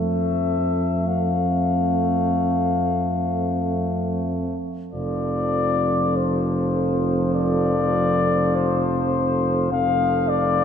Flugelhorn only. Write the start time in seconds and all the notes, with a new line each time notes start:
Already playing: E5
1.08 F5
4.93 D5
6.16 C5
7.35 D5
8.55 C5
9.72 F5
10.28 D5